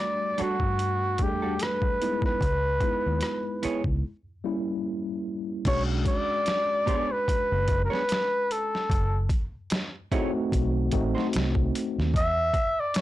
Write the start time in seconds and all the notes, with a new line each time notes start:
Already playing: G3 A3 D4 F#4 D5
0.38 G3 D4 F#4 A4, muted fingered electric bass stroke, closed hi-hat
0.60 G2, kick
0.79 closed hi-hat
1.18 E2 G3 A3 D4 G#4, kick, closed hi-hat
1.23 G4
1.28 A4
1.42 G3 D4 F#4 A4
1.59 B4, cross-stick, closed hi-hat
1.82 kick
2.01 G#3 B3 D#4 E4, closed hi-hat
2.22 B4, kick, cross-stick
2.41 C#2, kick, closed hi-hat
2.80 G#3 B3 D#4 E4, kick, closed hi-hat
3.06 D#2
3.21 muted hollow-body jazz guitar stroke, cross-stick, closed hi-hat
3.63 B3 E4 G#4 C#5, muted fingered electric bass stroke, closed hi-hat
3.84 C#2, kick
4.44 G3 A#3 C#4 E4
5.65 B1 G#3 C#4 D4 F#4 C#5, kick, closed hi-hat, crash
6.05 D5, kick, closed hi-hat
6.46 muted hollow-body jazz guitar stroke, snare, closed hi-hat
6.86 B3 D4 G#4 C#5, kick, closed hi-hat
7.12 B4
7.28 muted fingered electric bass stroke, kick, closed hi-hat
7.52 F#1
7.68 kick, closed hi-hat
7.85 A#4
7.90 B3 D4 G#4 B4 C#5, snare
8.09 snare, closed hi-hat
8.51 A4, closed hi-hat
8.75 snare
8.90 F#1, kick, closed hi-hat
9.29 kick, closed hi-hat
9.70 muted hollow-body jazz guitar stroke, snare, closed hi-hat
10.11 A3 C4 D#4 E4 F#4 G#4 C#5, kick, closed hi-hat
10.52 B1, kick, closed hi-hat
10.91 A1 A3 C4 D#4 F#4, kick, closed hi-hat
11.15 A3 D#4 F#4 C5, snare
11.33 C2, snare, closed hi-hat
11.55 kick
11.75 closed hi-hat
11.99 D#2, snare
12.14 E2 E5, kick, closed hi-hat
12.54 kick, closed hi-hat
12.80 D5
12.94 C#5, muted hollow-body jazz guitar stroke, snare, closed hi-hat